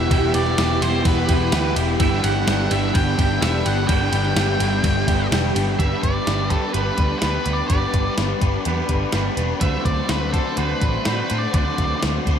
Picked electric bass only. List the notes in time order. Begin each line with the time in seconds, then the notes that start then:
0.11 E1
0.35 E1
0.58 E1
0.82 E1
1.05 E1
1.29 E1
1.52 D2
1.76 E1
2.00 G1
2.24 G1
2.47 G1
2.71 G1
2.95 G1
3.19 G1
3.42 E1
3.66 G1
3.89 G1
4.13 G1
4.36 G1
4.60 G1
4.84 G1
5.08 G1
5.32 E1
5.56 G1
5.79 G1
6.03 G1
6.27 G1
6.75 G1
6.98 D2
7.22 D2
7.46 D2
7.70 G1
7.93 G1
8.18 G1
8.42 G1
8.66 E2
8.89 G1
9.14 G1
9.37 E1
9.62 D2
9.85 D2
10.10 D2
10.58 D2
10.82 A1
11.06 A2
11.31 A2
11.54 D2
11.79 D2
12.04 D2
12.26 D2